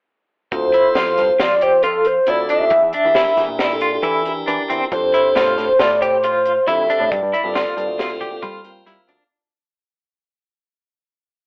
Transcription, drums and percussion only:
0.52 kick, closed hi-hat
0.74 closed hi-hat
0.95 snare, closed hi-hat
1.18 snare, closed hi-hat
1.40 snare, closed hi-hat
1.61 closed hi-hat
1.83 closed hi-hat
2.05 closed hi-hat
2.27 closed hi-hat
2.49 closed hi-hat
2.70 kick, closed hi-hat
2.93 closed hi-hat
3.15 snare, closed hi-hat
3.37 snare, closed hi-hat
3.59 snare, closed hi-hat
3.81 closed hi-hat
4.03 closed hi-hat
4.25 closed hi-hat
4.48 closed hi-hat
4.70 closed hi-hat
4.92 kick, closed hi-hat
5.14 closed hi-hat
5.36 snare, closed hi-hat
5.58 snare, closed hi-hat
5.80 snare, closed hi-hat
6.02 closed hi-hat
6.24 closed hi-hat
6.45 closed hi-hat
6.67 closed hi-hat
6.90 closed hi-hat
7.12 kick, closed hi-hat
7.34 closed hi-hat
7.55 snare, closed hi-hat
7.78 closed hi-hat
7.99 snare, closed hi-hat
8.21 kick, closed hi-hat
8.43 kick, closed hi-hat
8.64 closed hi-hat
8.87 snare, closed hi-hat
9.09 closed hi-hat

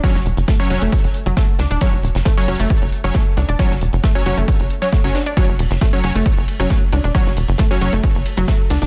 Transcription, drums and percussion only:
0.04 kick, closed hi-hat
0.15 snare
0.26 closed hi-hat, open hi-hat
0.37 closed hi-hat
0.48 kick, snare, closed hi-hat
0.70 closed hi-hat, open hi-hat
0.82 closed hi-hat
0.92 kick, closed hi-hat
1.04 closed hi-hat
1.14 closed hi-hat, open hi-hat
1.26 closed hi-hat
1.37 kick, snare, closed hi-hat
1.59 snare, closed hi-hat, open hi-hat
1.70 closed hi-hat
1.81 kick, closed hi-hat
1.93 closed hi-hat
2.03 closed hi-hat, open hi-hat
2.15 snare, closed hi-hat
2.25 kick, snare, closed hi-hat
2.48 open hi-hat
2.60 closed hi-hat
2.70 kick, closed hi-hat
2.92 closed hi-hat, open hi-hat
3.04 closed hi-hat
3.14 kick, snare, closed hi-hat
3.37 closed hi-hat, open hi-hat
3.49 closed hi-hat
3.59 kick, closed hi-hat
3.71 snare
3.81 closed hi-hat, open hi-hat
3.93 closed hi-hat
4.04 kick, snare, closed hi-hat
4.26 closed hi-hat, open hi-hat
4.38 closed hi-hat
4.48 kick, closed hi-hat
4.60 closed hi-hat
4.70 closed hi-hat, open hi-hat
4.82 closed hi-hat
4.92 kick, snare, closed hi-hat
5.15 snare, closed hi-hat, open hi-hat
5.26 closed hi-hat
5.37 kick, closed hi-hat, ride
5.48 closed hi-hat
5.59 closed hi-hat, open hi-hat, ride
5.71 snare, closed hi-hat
5.81 kick, snare, closed hi-hat, ride
6.04 open hi-hat, ride
6.15 closed hi-hat
6.26 kick, closed hi-hat, ride
6.48 closed hi-hat, open hi-hat, ride
6.60 closed hi-hat
6.70 kick, snare, closed hi-hat, ride
6.92 closed hi-hat, open hi-hat, ride
7.04 closed hi-hat
7.15 kick, closed hi-hat, ride
7.26 snare
7.37 closed hi-hat, open hi-hat, ride
7.48 closed hi-hat
7.58 kick, snare, closed hi-hat, ride
7.80 closed hi-hat, open hi-hat, ride
7.93 closed hi-hat
8.04 kick, closed hi-hat, ride
8.15 closed hi-hat
8.26 closed hi-hat, open hi-hat, ride
8.37 closed hi-hat
8.48 kick, snare, closed hi-hat, ride
8.70 snare, closed hi-hat, open hi-hat, ride
8.82 closed hi-hat

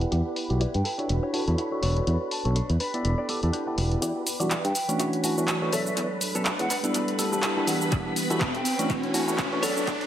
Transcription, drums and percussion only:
0.01 closed hi-hat
0.12 closed hi-hat
0.36 open hi-hat
0.50 closed hi-hat
0.61 closed hi-hat
0.74 closed hi-hat
0.85 open hi-hat
0.99 closed hi-hat
1.09 closed hi-hat
1.34 open hi-hat
1.48 closed hi-hat
1.58 closed hi-hat
1.83 open hi-hat
1.97 closed hi-hat
2.07 closed hi-hat
2.31 open hi-hat
2.45 closed hi-hat
2.56 closed hi-hat
2.70 closed hi-hat
2.80 open hi-hat
2.94 closed hi-hat
3.05 closed hi-hat
3.29 open hi-hat
3.43 closed hi-hat
3.53 closed hi-hat
3.78 open hi-hat
3.92 closed hi-hat
4.02 closed hi-hat, shaker
4.27 open hi-hat, shaker
4.40 closed hi-hat, shaker
4.51 clap, closed hi-hat, shaker
4.65 closed hi-hat
4.75 open hi-hat, shaker
4.89 closed hi-hat, shaker
5.00 closed hi-hat, shaker
5.13 closed hi-hat
5.24 open hi-hat, shaker
5.38 shaker
5.48 clap, closed hi-hat, shaker
5.73 open hi-hat, shaker
5.87 shaker
5.97 closed hi-hat, shaker
6.11 shaker
6.21 open hi-hat, shaker
6.35 closed hi-hat, shaker
6.45 clap, closed hi-hat, shaker
6.59 closed hi-hat
6.70 clap, open hi-hat, shaker
6.84 closed hi-hat, shaker
6.94 closed hi-hat, shaker
7.08 closed hi-hat
7.19 open hi-hat, shaker
7.33 shaker
7.43 clap, closed hi-hat, shaker
7.57 shaker
7.67 open hi-hat, shaker
7.82 shaker
7.91 kick, closed hi-hat, shaker
7.92 shaker
8.06 shaker
8.16 open hi-hat, shaker
8.30 closed hi-hat, shaker
8.40 kick, clap, closed hi-hat, shaker
8.55 closed hi-hat, shaker
8.65 open hi-hat, shaker
8.79 closed hi-hat, shaker
8.90 kick, closed hi-hat, shaker
9.03 closed hi-hat, shaker
9.14 open hi-hat, shaker
9.28 shaker
9.38 kick, clap, closed hi-hat, shaker
9.52 shaker
9.63 open hi-hat, shaker
9.76 shaker
9.87 kick, closed hi-hat, shaker
10.01 closed hi-hat, shaker

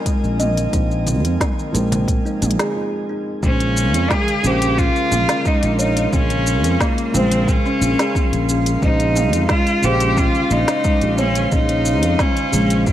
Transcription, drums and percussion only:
0.06 kick, closed hi-hat, shaker
0.24 shaker
0.40 closed hi-hat, mid tom, shaker
0.57 closed hi-hat, shaker
0.73 kick, closed hi-hat, shaker
0.91 shaker
1.07 closed hi-hat, frame drum, shaker
1.25 closed hi-hat, shaker
1.41 kick, snare, closed hi-hat, mid tom, shaker
1.59 shaker
1.75 closed hi-hat, shaker
1.92 closed hi-hat, frame drum, shaker
2.08 kick, closed hi-hat, shaker
2.26 shaker
2.42 closed hi-hat, mid tom, shaker
2.51 closed hi-hat
2.59 snare, closed hi-hat, shaker
3.43 kick, shaker
3.60 closed hi-hat, shaker
3.77 shaker
3.94 closed hi-hat, shaker
4.10 kick, snare, mid tom, shaker
4.28 closed hi-hat, shaker
4.44 shaker
4.62 closed hi-hat, shaker
4.78 kick, shaker
4.96 shaker
5.11 mid tom, shaker
5.29 snare, closed hi-hat, shaker
5.45 kick, shaker
5.63 closed hi-hat, shaker
5.79 shaker
5.97 closed hi-hat, shaker
6.13 kick, mid tom, shaker
6.30 closed hi-hat, shaker
6.47 shaker
6.64 closed hi-hat, shaker
6.80 kick, snare, shaker
6.98 closed hi-hat, shaker
7.14 mid tom, shaker
7.32 closed hi-hat, shaker
7.48 kick, shaker
7.66 shaker
7.82 shaker
7.99 snare, closed hi-hat, shaker
8.15 kick, mid tom, shaker
8.33 closed hi-hat, shaker
8.49 shaker
8.66 closed hi-hat, shaker
8.82 kick, shaker
9.00 closed hi-hat, shaker
9.16 mid tom, shaker
9.33 closed hi-hat, shaker
9.49 kick, snare, shaker
9.67 closed hi-hat, shaker
9.83 shaker
10.00 closed hi-hat, shaker
10.17 kick, mid tom, shaker
10.35 shaker
10.51 shaker
10.68 snare, closed hi-hat, shaker
10.84 kick, shaker
11.01 closed hi-hat, shaker
11.18 mid tom, shaker
11.35 closed hi-hat, shaker
11.52 kick, shaker
11.69 closed hi-hat, shaker
11.85 shaker
12.03 closed hi-hat, shaker
12.19 kick, snare, mid tom, shaker
12.37 closed hi-hat, shaker
12.53 shaker
12.70 closed hi-hat, shaker
12.87 kick, shaker

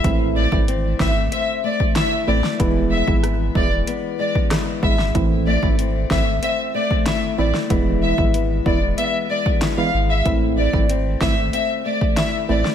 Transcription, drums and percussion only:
0.04 kick, closed hi-hat
0.52 kick
0.68 closed hi-hat
1.00 kick, snare
1.32 closed hi-hat
1.80 kick
1.96 snare, closed hi-hat
2.44 snare
2.60 kick, closed hi-hat
3.08 kick
3.23 cross-stick, closed hi-hat
3.55 kick
3.87 closed hi-hat
4.35 kick
4.51 cross-stick, snare, closed hi-hat
4.83 kick
4.99 snare
5.15 kick, closed hi-hat
5.63 kick
5.79 closed hi-hat
6.11 kick, snare
6.43 closed hi-hat
6.91 kick
7.06 snare, closed hi-hat
7.54 snare
7.70 kick, closed hi-hat
8.18 kick
8.34 closed hi-hat
8.66 kick
8.98 closed hi-hat
9.46 kick
9.61 snare, closed hi-hat
10.26 kick, closed hi-hat
10.73 kick
10.89 closed hi-hat
11.21 kick, snare
11.53 closed hi-hat
12.01 kick
12.17 snare, closed hi-hat
12.65 snare

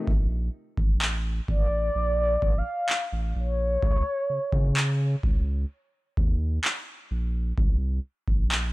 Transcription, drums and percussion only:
0.07 kick
0.77 kick
1.02 clap
1.48 kick
2.42 kick
2.89 clap
3.83 kick
4.52 kick
4.77 clap
5.23 kick
6.17 kick
6.64 clap
7.58 kick
8.28 kick
8.52 clap

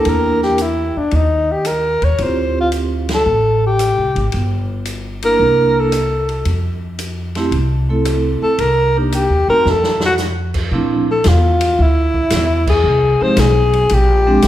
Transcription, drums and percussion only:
0.05 ride
0.42 snare
0.58 hi-hat pedal, ride
1.11 ride
1.65 cross-stick, hi-hat pedal, ride
2.02 ride
2.18 ride
2.72 hi-hat pedal, ride
3.09 snare, ride
3.79 cross-stick, hi-hat pedal, ride
4.16 ride
4.32 ride
4.85 hi-hat pedal, ride
5.22 ride
5.92 cross-stick, hi-hat pedal, ride
6.29 ride
6.45 ride
6.99 hi-hat pedal, ride
7.35 snare, ride
7.52 ride
8.05 cross-stick, hi-hat pedal, ride
8.59 ride
9.12 hi-hat pedal, ride
9.66 snare
9.83 snare
10.00 snare
10.18 snare, hi-hat pedal
10.54 kick, crash
11.24 snare, hi-hat pedal, ride
11.61 ride
12.14 kick
12.30 snare, hi-hat pedal, ride
12.67 kick, crash
13.37 snare, hi-hat pedal, ride
13.73 ride
13.89 ride
14.42 snare, hi-hat pedal, ride

